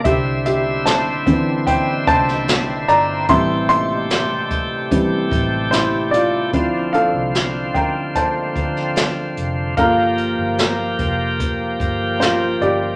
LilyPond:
<<
  \new Staff \with { instrumentName = "Upright piano" } { \time 4/4 \key d \minor \tempo 4 = 74 <g' e''>8 <g' e''>8 <c'' a''>4 <c'' g''>8 <c'' a''>4 <d'' bes''>8 | <e'' c'''>8 <e'' c'''>2~ <e'' c'''>8 <e' c''>8 <f' d''>8~ | <f' d''>8 <a' f''>4 <bes' g''>8 <c'' a''>4. r8 | <bes' f''>2. <f' c''>8 <g' d''>8 | }
  \new Staff \with { instrumentName = "Upright piano" } { \time 4/4 \key d \minor r4. <d e c'>8 r2 | <e g c'>4. r8 <e g c'>8 r4. | <f c' e'>8 r2. r8 | <bes f' a'>1 | }
  \new Staff \with { instrumentName = "Tonewheel organ" } { \time 4/4 \key d \minor <d c' e'>1 | <c a g'>1 | <d f c'>1 | <f bes g'>1 | }
  \new Staff \with { instrumentName = "Fingered electric bass" } { \clef bass \time 4/4 \key d \minor c,2~ c,8 c,4 g,,8 | a,,2~ a,,8 a,,4. | d,8. c,8. d,4 d,4 f,,8 | g,,8. g,,8. f,,4 g,,4 g,,8 | }
  \new DrumStaff \with { instrumentName = "Drums" } \drummode { \time 4/4 <hh bd>8 hh8 <hh sn>8 <hh bd>8 <hh bd>8 <hh bd>16 sn16 <hh sn>8 hh8 | <hh bd>8 hh8 <hh sn>8 <hh bd>8 <hh bd>8 <hh bd>8 <hh sn>8 hh8 | <hh bd>8 hh8 <hh sn>8 <hh bd>8 <hh bd>8 <hh bd>16 sn16 <hh sn>8 hh8 | <hh bd>8 hh8 <hh sn>8 <hh bd>8 <hh bd>8 <hh bd>8 <hh sn>8 hh8 | }
>>